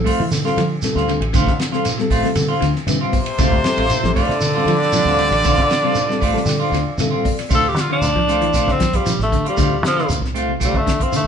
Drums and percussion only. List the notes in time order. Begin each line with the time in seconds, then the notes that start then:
0.06 kick, open hi-hat, shekere
0.31 snare, ride bell, shekere
0.46 snare
0.57 snare, ride bell, shekere
0.82 snare, ride bell, shekere
0.97 snare
1.09 ride bell, shekere
1.22 ride bell
1.34 kick, ride bell, shekere
1.47 kick, snare
1.59 snare, ride bell, shekere
1.73 snare
1.85 snare, ride bell, shekere
1.99 snare
2.10 kick, snare, open hi-hat, shekere
2.24 snare
2.35 ride bell, shekere
2.62 snare, ride bell, shekere
2.76 snare
2.88 ride bell, shekere
3.13 kick, open hi-hat, shekere
3.26 ride bell
3.38 kick, ride bell, shekere
3.52 kick
3.64 snare, ride bell, shekere
3.78 ride bell
3.90 ride bell, shekere
4.04 snare
4.16 kick, open hi-hat, shekere
4.30 snare
4.41 ride bell, shekere
4.67 ride bell, shekere
4.82 snare
4.93 ride bell, shekere
5.18 ride bell, shekere
5.32 ride bell
5.44 kick, ride bell, shekere
5.58 kick
5.69 snare, ride bell, shekere
5.95 ride bell, shekere
6.11 snare
6.21 kick, open hi-hat, shekere
6.37 snare
6.46 snare, ride bell, shekere
6.72 snare, ride bell, shekere
6.98 ride bell, shekere
7.25 kick, open hi-hat, shekere
7.39 snare, ride bell
7.50 kick, crash, shekere
7.76 snare, closed hi-hat, shekere
8.02 closed hi-hat, shekere
8.28 snare, closed hi-hat, shekere
8.42 closed hi-hat
8.53 kick, snare, closed hi-hat, shekere
8.68 kick, snare
8.80 kick, snare, closed hi-hat, shekere
8.93 kick, closed hi-hat
9.06 closed hi-hat, shekere
9.20 snare
9.32 kick, closed hi-hat, shekere
9.46 closed hi-hat
9.57 kick, closed hi-hat, shekere
9.84 snare, closed hi-hat, shekere
9.98 snare
10.09 closed hi-hat, shekere
10.25 snare
10.35 closed hi-hat, shekere
10.61 kick, closed hi-hat, shekere
10.74 kick
10.87 kick, snare, closed hi-hat, shekere
11.01 kick, closed hi-hat
11.12 closed hi-hat, shekere